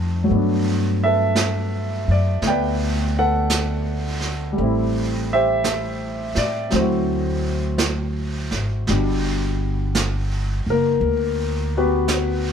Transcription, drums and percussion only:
0.28 brush sweep
1.35 brush sweep, snare, hi-hat pedal
2.42 brush sweep, snare
3.50 brush sweep, snare, hi-hat pedal
4.21 snare
4.57 brush sweep
5.64 brush sweep, snare, hi-hat pedal
6.35 snare
6.70 brush sweep, snare
7.78 brush sweep, snare, hi-hat pedal
8.51 snare
8.87 brush sweep, snare
9.95 brush sweep, snare, hi-hat pedal
11.02 brush sweep
12.08 brush sweep, snare, hi-hat pedal

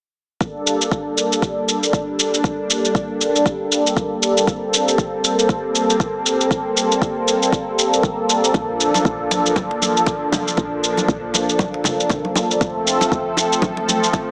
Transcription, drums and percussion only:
0.41 kick, shaker
0.67 shaker
0.81 shaker
0.92 kick, shaker
1.18 shaker
1.32 shaker
1.42 kick, shaker
1.69 shaker
1.83 shaker
1.93 kick, shaker
2.19 shaker
2.34 shaker
2.44 kick, shaker
2.70 shaker
2.85 shaker
2.95 kick, shaker
3.21 shaker
3.36 shaker
3.46 kick, shaker
3.72 shaker
3.87 shaker
3.97 kick, shaker
4.23 shaker
4.37 shaker
4.47 kick, shaker
4.74 shaker
4.88 shaker
4.98 kick, shaker
5.24 shaker
5.39 shaker
5.49 kick, shaker
5.75 shaker
5.90 shaker
6.00 kick, shaker
6.26 shaker
6.41 shaker
6.51 kick, shaker
6.77 shaker
6.92 shaker
7.02 kick, shaker
7.28 shaker
7.43 shaker
7.53 kick, shaker
7.79 shaker
7.93 shaker
8.03 kick, shaker
8.30 shaker
8.44 shaker
8.54 kick, muted conga, shaker
8.81 shaker
8.94 muted conga, high conga, shaker
9.05 kick, shaker
9.31 muted conga, high conga, shaker
9.46 shaker
9.56 kick, high conga, shaker
9.71 muted conga
9.82 high conga, shaker
9.97 shaker
10.06 kick, muted conga, shaker
10.32 high conga, low conga, shaker
10.48 shaker
10.57 kick, muted conga, shaker
10.84 shaker
10.97 muted conga, high conga, shaker
11.08 kick, shaker
11.34 muted conga, high conga, shaker
11.49 shaker
11.59 kick, high conga, shaker
11.74 muted conga
11.84 high conga, low conga, shaker
12.00 shaker
12.09 kick, muted conga, low conga, shaker
12.25 high conga
12.36 high conga, shaker
12.51 shaker
12.61 kick, muted conga, shaker
12.87 shaker
13.01 muted conga, high conga, shaker
13.12 kick, shaker
13.37 muted conga, high conga, shaker
13.53 shaker
13.62 kick, high conga, shaker
13.77 muted conga
13.89 high conga, shaker
14.04 shaker
14.13 kick, muted conga, shaker

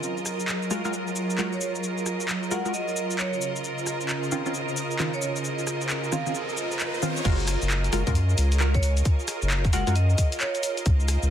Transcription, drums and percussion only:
0.03 shaker
0.17 shaker
0.26 cross-stick, shaker
0.40 shaker
0.48 clap, shaker
0.62 shaker
0.71 cross-stick, shaker
0.85 shaker
0.93 shaker
1.07 shaker
1.16 shaker
1.30 shaker
1.38 clap, shaker
1.53 shaker
1.61 shaker
1.75 shaker
1.83 shaker
1.98 shaker
2.06 cross-stick, shaker
2.20 shaker
2.29 clap, shaker
2.43 shaker
2.51 shaker
2.66 shaker
2.74 shaker
2.88 shaker
2.97 shaker
3.11 shaker
3.19 clap, shaker
3.33 shaker
3.42 shaker
3.56 shaker
3.64 shaker
3.78 shaker
3.87 cross-stick, shaker
4.01 shaker
4.09 clap, shaker
4.23 shaker
4.32 shaker
4.46 shaker
4.54 shaker
4.69 shaker
4.77 shaker
4.91 shaker
4.99 clap, shaker
5.14 shaker
5.22 shaker
5.36 shaker
5.45 shaker
5.59 shaker
5.67 cross-stick, shaker
5.81 shaker
5.90 clap, shaker
6.04 shaker
6.12 cross-stick, shaker
6.26 shaker
6.35 shaker
6.49 shaker
6.57 shaker
6.71 shaker
6.80 clap, shaker
6.94 shaker
7.02 shaker
7.17 shaker
7.25 kick, closed hi-hat, crash, shaker
7.39 shaker
7.48 cross-stick, open hi-hat, shaker
7.62 shaker
7.70 clap, shaker
7.84 closed hi-hat, shaker
7.93 cross-stick, open hi-hat, shaker
8.07 kick, closed hi-hat, shaker
8.15 closed hi-hat, shaker
8.29 shaker
8.38 open hi-hat, shaker
8.52 closed hi-hat, shaker
8.60 clap, shaker
8.74 kick, closed hi-hat, shaker
8.83 open hi-hat, shaker
8.97 closed hi-hat, shaker
9.05 kick, closed hi-hat, shaker
9.20 shaker
9.28 cross-stick, open hi-hat, shaker
9.42 shaker
9.50 clap, shaker
9.65 kick, closed hi-hat, shaker
9.73 open hi-hat, shaker
9.87 closed hi-hat, shaker
9.96 closed hi-hat, shaker
10.10 shaker
10.18 kick, open hi-hat, shaker
10.32 closed hi-hat, shaker
10.41 clap, shaker
10.55 closed hi-hat, shaker
10.63 open hi-hat, shaker
10.77 closed hi-hat, shaker
10.86 kick, closed hi-hat, shaker
11.00 shaker
11.08 cross-stick, open hi-hat, shaker
11.23 shaker

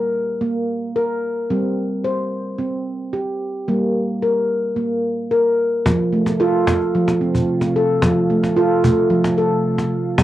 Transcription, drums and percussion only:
5.86 cajon bass, cajon slap
6.26 cajon slap
6.67 cajon bass, cajon slap
6.81 cajon slap
7.08 cajon slap
7.21 cajon slap
7.35 cajon bass
7.61 cajon slap
8.02 cajon bass, cajon slap
8.43 cajon slap
8.84 cajon bass
8.97 cajon slap
9.24 cajon slap
9.37 cajon slap
9.78 cajon slap
10.18 cajon bass, cajon slap

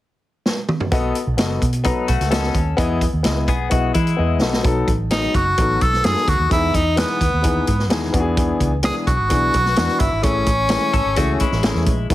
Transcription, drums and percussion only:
0.46 snare
0.69 mid tom
0.80 floor tom
0.92 kick, closed hi-hat
1.15 closed hi-hat
1.38 snare, closed hi-hat
1.62 kick, closed hi-hat
1.73 closed hi-hat
1.84 kick, closed hi-hat
2.08 kick, closed hi-hat
2.20 snare, closed hi-hat
2.31 snare, closed hi-hat
2.43 snare
2.54 kick, closed hi-hat
2.78 kick, closed hi-hat
3.01 kick, closed hi-hat
3.24 snare, closed hi-hat
3.48 kick, closed hi-hat
3.71 kick, closed hi-hat
3.94 kick, closed hi-hat
4.07 closed hi-hat
4.42 snare
4.53 snare
4.64 kick, closed hi-hat
4.88 kick, closed hi-hat
5.10 snare, closed hi-hat
5.34 kick, closed hi-hat
5.58 kick, closed hi-hat
5.81 kick, closed hi-hat
5.93 snare
6.04 snare, closed hi-hat
6.16 snare
6.28 kick, closed hi-hat
6.51 kick, closed hi-hat
6.74 kick, closed hi-hat
6.97 snare, closed hi-hat
7.21 kick, closed hi-hat
7.44 kick, closed hi-hat
7.67 kick, closed hi-hat
7.79 snare
7.90 snare, closed hi-hat
8.02 snare
8.14 kick, closed hi-hat
8.37 kick, closed hi-hat
8.60 kick, closed hi-hat
8.83 snare, closed hi-hat
9.07 kick, closed hi-hat
9.30 kick, closed hi-hat
9.54 kick, closed hi-hat
9.66 snare
9.76 snare, closed hi-hat
9.88 snare
10.00 kick, closed hi-hat
10.23 kick, closed hi-hat
10.46 kick, closed hi-hat
10.69 snare, closed hi-hat
10.93 kick, closed hi-hat
11.16 kick, closed hi-hat
11.40 kick, closed hi-hat
11.52 snare
11.63 snare, closed hi-hat
11.75 snare
11.86 kick, closed hi-hat
12.10 kick, closed hi-hat

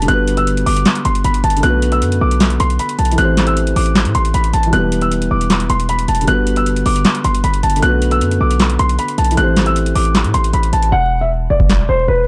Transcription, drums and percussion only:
0.02 closed hi-hat
0.08 closed hi-hat
0.27 closed hi-hat
0.37 closed hi-hat
0.47 closed hi-hat
0.57 closed hi-hat
0.66 open hi-hat
0.76 closed hi-hat
0.85 snare, clap, closed hi-hat
0.95 closed hi-hat
1.05 closed hi-hat
1.15 closed hi-hat
1.24 closed hi-hat
1.34 closed hi-hat
1.44 closed hi-hat
1.50 closed hi-hat
1.57 closed hi-hat
1.63 closed hi-hat
1.82 closed hi-hat
1.92 closed hi-hat
2.02 closed hi-hat
2.12 closed hi-hat
2.31 closed hi-hat
2.40 snare, clap, closed hi-hat
2.50 closed hi-hat
2.60 closed hi-hat
2.70 closed hi-hat
2.79 closed hi-hat
2.89 closed hi-hat
2.99 closed hi-hat
3.05 closed hi-hat
3.11 closed hi-hat
3.18 closed hi-hat
3.37 snare, clap, closed hi-hat
3.47 closed hi-hat
3.57 closed hi-hat
3.67 closed hi-hat
3.76 open hi-hat
3.86 closed hi-hat
3.95 snare, clap, closed hi-hat
4.05 closed hi-hat
4.15 closed hi-hat
4.25 closed hi-hat
4.34 closed hi-hat
4.44 closed hi-hat
4.53 closed hi-hat
4.63 closed hi-hat
4.73 closed hi-hat
4.92 closed hi-hat
5.02 closed hi-hat
5.12 closed hi-hat
5.22 closed hi-hat
5.41 closed hi-hat
5.50 snare, clap, closed hi-hat
5.60 closed hi-hat
5.70 closed hi-hat
5.80 closed hi-hat
5.89 closed hi-hat
5.99 closed hi-hat
6.08 closed hi-hat
6.15 closed hi-hat
6.21 closed hi-hat
6.27 closed hi-hat
6.47 closed hi-hat
6.56 closed hi-hat
6.66 closed hi-hat
6.76 closed hi-hat
6.86 open hi-hat
6.96 closed hi-hat
7.05 snare, clap, closed hi-hat
7.15 closed hi-hat
7.24 closed hi-hat
7.35 closed hi-hat
7.44 closed hi-hat
7.54 closed hi-hat
7.63 closed hi-hat
7.70 closed hi-hat
7.76 closed hi-hat
7.82 closed hi-hat
8.02 closed hi-hat
8.11 closed hi-hat
8.21 closed hi-hat
8.31 closed hi-hat
8.51 closed hi-hat
8.60 snare, clap, closed hi-hat
8.70 closed hi-hat
8.79 closed hi-hat
8.89 closed hi-hat
8.99 closed hi-hat
9.08 closed hi-hat
9.18 closed hi-hat
9.24 closed hi-hat
9.31 closed hi-hat
9.37 closed hi-hat
9.56 snare, clap, closed hi-hat
9.66 closed hi-hat
9.76 closed hi-hat
9.86 closed hi-hat
9.96 open hi-hat
10.05 closed hi-hat
10.15 snare, clap, closed hi-hat
10.24 closed hi-hat
10.34 closed hi-hat
10.44 closed hi-hat
10.53 closed hi-hat
10.63 closed hi-hat
10.73 closed hi-hat
10.82 closed hi-hat
11.60 kick
11.70 snare, clap

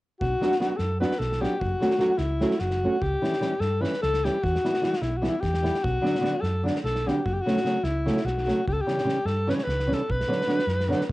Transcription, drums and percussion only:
0.21 kick
0.42 snare
0.52 snare
0.61 snare
0.79 snare
1.02 snare
1.11 snare
1.21 snare
1.32 snare
1.44 snare
1.61 kick
1.82 snare
1.91 snare
2.00 snare
2.18 snare
2.41 snare
2.51 snare
2.59 snare
2.71 snare
3.02 kick
3.24 snare
3.33 snare
3.42 snare
3.61 snare
3.84 snare
3.93 snare
4.03 snare
4.14 snare
4.25 snare
4.44 kick
4.56 snare
4.65 snare
4.74 snare
4.84 snare
4.93 snare
5.02 snare
5.24 snare
5.43 kick, snare
5.54 snare
5.65 snare
5.75 snare
5.84 kick
6.06 snare
6.15 snare
6.25 snare
6.44 snare
6.67 snare
6.75 snare
6.86 snare
6.96 snare
7.08 snare
7.26 kick
7.48 snare
7.57 snare
7.65 snare
7.84 snare
8.07 snare
8.17 snare
8.27 snare
8.38 snare
8.48 snare
8.68 kick
8.88 snare
8.98 snare
9.09 snare
9.27 snare
9.50 snare
9.59 snare
9.69 snare
9.80 snare
9.92 snare
10.10 kick
10.21 snare
10.32 snare
10.41 snare
10.49 snare
10.59 snare
10.69 snare
10.80 snare
10.92 snare
11.01 snare

